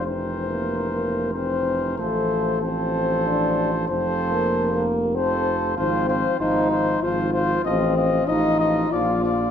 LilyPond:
<<
  \new Staff \with { instrumentName = "Trumpet" } { \time 3/4 \key f \major \tempo 4 = 95 c''2 c''4 | c''4 c''2 | c''4. r8 c''4 | \key f \dorian c''8 c''8 c''8 c''8 c''8 c''8 |
ees''8 ees''8 ees''8 ees''8 d''8 d''8 | }
  \new Staff \with { instrumentName = "Flugelhorn" } { \time 3/4 \key f \major bes'2 bes'4 | a'4 a'2 | a'4. r8 a'4 | \key f \dorian f'8 f'8 f'8 f'8 f'8 f'8 |
f'8 f'8 f'8 f'8 f'8 f'8 | }
  \new Staff \with { instrumentName = "French horn" } { \time 3/4 \key f \major \tuplet 3/2 { c'4 bes8~ bes8 bes4 } c'4 | a4 c'4 d'4 | \tuplet 3/2 { c'4 bes8~ bes8 bes4 } c'8 r8 | \key f \dorian c'4 ees'4 f'4 |
c'4 ees'4 f'4 | }
  \new Staff \with { instrumentName = "Trombone" } { \clef bass \time 3/4 \key f \major e2 e4 | f4 f2 | f4. r8 f4 | \key f \dorian f8 f8 f8 f8 f8 f8 |
f8 f8 f8 f8 f8 f8 | }
  \new Staff \with { instrumentName = "Bass trombone" } { \clef bass \time 3/4 \key f \major f,,2. | a,,2. | f,,2. | \key f \dorian aes,,4 aes,,4 aes,,4 |
a,,4 a,,4 bes,,4 | }
>>